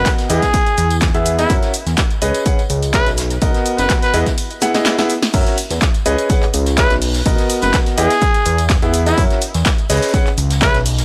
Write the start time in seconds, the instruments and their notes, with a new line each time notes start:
Already playing: grand piano B3 F#4 A#4 D#5, trumpet B4
0.06 kick, snare, clap, closed hi-hat, tambourine, shaker
0.18 snare, open hi-hat, tambourine, shaker
0.30 analog synth bass E2, grand piano B3 E4 G#4 D#5, trumpet G#4, snare, open hi-hat, shaker
0.42 kick, snare, closed hi-hat, tambourine, shaker
0.54 kick, closed hi-hat, tambourine, shaker
0.66 closed hi-hat, tambourine, shaker
0.77 analog synth bass E2, open hi-hat, shaker
0.91 closed hi-hat, tambourine, shaker
1.01 kick, snare, clap, closed hi-hat, tambourine, shaker
1.14 analog synth bass E2, grand piano B3 E4 G#4 E5, closed hi-hat, tambourine, shaker
1.26 open hi-hat, shaker
1.38 grand piano B3 E4 G#4 D#5, trumpet E4, snare, closed hi-hat, tambourine, shaker
1.50 analog synth bass F#2, grand piano C#4 F#4 A#4 E5, kick, closed hi-hat, tambourine, shaker
1.63 snare, closed hi-hat, tambourine, shaker
1.74 open hi-hat, shaker
1.86 analog synth bass E2, snare, closed hi-hat, tambourine, shaker
1.97 kick, snare, clap, closed hi-hat, tambourine, shaker
2.10 closed hi-hat, tambourine, shaker
2.22 analog synth bass C#2, grand piano C#4 G#4 B4 D#5, open hi-hat, shaker
2.34 closed hi-hat, tambourine, shaker
2.46 grand piano C#4 G#4 B4 F#5, kick, closed hi-hat, shaker
2.59 closed hi-hat, tambourine, shaker
2.70 analog synth bass C#2, open hi-hat, shaker
2.83 closed hi-hat, tambourine, shaker
2.93 grand piano C#4 G#4 B4 E5, trumpet B4, kick, clap, closed hi-hat, tambourine, shaker
3.06 analog synth bass B1, snare, closed hi-hat, tambourine, shaker
3.17 snare, open hi-hat, shaker
3.30 snare, closed hi-hat, tambourine, shaker
3.42 analog synth bass B1, grand piano B3 F#4 A#4 D#5, kick, closed hi-hat, tambourine, shaker
3.54 snare, closed hi-hat, tambourine, shaker
3.66 open hi-hat, shaker
3.78 analog synth bass F#1, trumpet B4, snare, closed hi-hat, tambourine, shaker
3.90 kick, snare, clap, closed hi-hat, shaker
4.02 trumpet B4, snare, open hi-hat, tambourine, shaker
4.14 analog synth bass E2, grand piano B3 E4 G#4 D#5, snare, open hi-hat, shaker
4.26 kick, snare, closed hi-hat, tambourine, shaker
4.38 closed hi-hat, tambourine, shaker
4.51 closed hi-hat, tambourine, shaker
4.61 grand piano B3 E4 G#4 F#5, snare, open hi-hat, shaker
4.75 grand piano B3 E4 G#4 D#5, snare, closed hi-hat, tambourine, shaker
4.85 snare, clap, closed hi-hat, tambourine, shaker
4.98 grand piano B3 E4 G#4 E5, snare, closed hi-hat, tambourine, shaker
5.09 open hi-hat, shaker
5.22 snare, closed hi-hat, tambourine, shaker
5.34 analog synth bass F#2, grand piano C#4 F#4 A#4 E5, kick, closed hi-hat, crash, tambourine, shaker
5.46 snare, closed hi-hat, tambourine, shaker
5.58 open hi-hat, shaker
5.70 analog synth bass E2, snare, closed hi-hat, tambourine, shaker
5.81 kick, snare, clap, closed hi-hat, tambourine, shaker
5.94 closed hi-hat, tambourine, shaker
6.06 analog synth bass C#2, grand piano C#4 G#4 B4 D#5, open hi-hat, shaker
6.18 closed hi-hat, tambourine, shaker
6.30 grand piano C#4 G#4 B4 F#5, kick, closed hi-hat, tambourine, shaker
6.43 clap, closed hi-hat, tambourine, shaker
6.54 analog synth bass C#2, open hi-hat, shaker
6.66 snare, closed hi-hat, tambourine, shaker
6.77 grand piano C#4 G#4 B4 E5, trumpet B4, kick, snare, clap, closed hi-hat, tambourine, shaker
6.90 analog synth bass B1, snare, closed hi-hat, tambourine, shaker
7.02 open hi-hat, shaker
7.14 snare, closed hi-hat, tambourine, shaker
7.25 analog synth bass B1, grand piano B3 F#4 A#4 D#5, kick, closed hi-hat, tambourine, shaker
7.38 snare, closed hi-hat, tambourine, shaker
7.50 open hi-hat, shaker
7.62 analog synth bass F#1, trumpet B4, snare, closed hi-hat, tambourine, shaker
7.74 kick, snare, clap, closed hi-hat, tambourine, shaker
7.86 snare, open hi-hat, tambourine, shaker
7.97 analog synth bass E2, grand piano B3 E4 G#4 D#5, trumpet G#4, snare, open hi-hat, shaker
8.10 snare, closed hi-hat, tambourine, shaker
8.21 kick, closed hi-hat, tambourine, shaker
8.34 closed hi-hat, tambourine, shaker
8.46 analog synth bass E2, open hi-hat, shaker
8.58 closed hi-hat, tambourine, shaker
8.70 kick, snare, clap, closed hi-hat, tambourine, shaker
8.82 analog synth bass E2, grand piano B3 E4 G#4 E5, closed hi-hat, tambourine, shaker
8.93 open hi-hat, shaker
9.06 grand piano B3 E4 G#4 D#5, trumpet E4, snare, closed hi-hat, tambourine, shaker
9.18 analog synth bass F#2, grand piano C#4 F#4 A#4 E5, kick, closed hi-hat, tambourine, shaker
9.30 snare, closed hi-hat, tambourine, shaker
9.42 open hi-hat, shaker
9.54 analog synth bass E2, snare, closed hi-hat, tambourine, shaker
9.65 kick, snare, clap, closed hi-hat, tambourine, shaker
9.78 closed hi-hat, tambourine, shaker
9.90 analog synth bass C#2, grand piano C#4 G#4 B4 D#5, snare, open hi-hat, shaker
9.96 snare, shaker
10.02 snare, closed hi-hat, tambourine, shaker
10.08 snare, shaker
10.14 grand piano C#4 G#4 B4 F#5, kick, closed hi-hat, tambourine, shaker
10.26 clap, closed hi-hat, tambourine, shaker
10.38 analog synth bass C#2, open hi-hat, shaker
10.50 snare, closed hi-hat, tambourine, shaker
10.61 grand piano C#4 G#4 B4 E5, trumpet B4, kick, snare, clap, closed hi-hat, tambourine, shaker
10.74 analog synth bass B1, snare, closed hi-hat, tambourine, shaker
10.86 open hi-hat, shaker
10.98 snare, closed hi-hat, tambourine, shaker